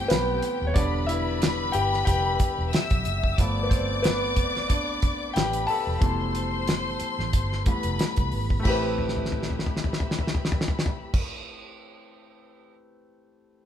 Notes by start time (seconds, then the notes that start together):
Already playing: E3 G3 A3 B3 C4 G4 B4 C5 G5
0.08 B1 B3 B4, snare, closed hi-hat
0.42 closed hi-hat
0.62 D#1
0.67 C#5
0.74 E1 D3 G3 B3 D4 B4 D5 B5, kick, closed hi-hat
1.06 E4 E5, closed hi-hat
1.42 snare, closed hi-hat
1.72 G1 G4 G5, closed hi-hat
1.94 snare
2.05 F1 G4 G5, kick, closed hi-hat
2.40 kick, closed hi-hat
2.58 E1
2.72 E5 E6, snare, closed hi-hat
2.90 B1, kick, closed hi-hat
3.05 F#1, closed hi-hat
3.24 kick
3.37 G1 F3 A3 B3 D5 D6, kick, closed hi-hat
3.63 B4
3.69 C4 C5, kick, closed hi-hat
4.03 B3 B4, snare, closed hi-hat
4.36 F1, kick, closed hi-hat
4.56 snare
4.68 D4 D5, kick, closed hi-hat
5.02 kick, closed hi-hat
5.34 A1 G4 B4 G5 B5, snare, closed hi-hat
5.53 closed hi-hat
5.67 A4 A5, open hi-hat
5.87 E1
6.01 F1 B2 E3 G3 A3 C5 C6, kick, closed hi-hat
6.35 closed hi-hat
6.68 snare, closed hi-hat
7.00 muted fingered electric bass stroke, closed hi-hat
7.19 A1, snare
7.33 G1, kick, closed hi-hat
7.52 snare
7.66 E3 G3 A3 B3 B4 B5, kick, closed hi-hat
7.83 F1, closed hi-hat
7.99 snare, closed hi-hat
8.16 C2, kick, closed hi-hat
8.32 G#1, open hi-hat
8.50 kick
8.59 A3 C4
8.65 A1 E4 G4 E5 B5, kick, crash
8.70 B4
8.98 floor tom
9.09 snare
9.16 floor tom
9.26 snare
9.32 floor tom
9.43 snare
9.50 floor tom
9.59 snare
9.66 floor tom
9.77 snare
9.84 floor tom
9.93 snare
10.00 floor tom
10.11 snare
10.19 floor tom
10.27 snare
10.35 floor tom
10.45 snare
10.52 floor tom
10.61 snare
10.68 floor tom
10.79 snare
10.86 floor tom
11.14 kick, crash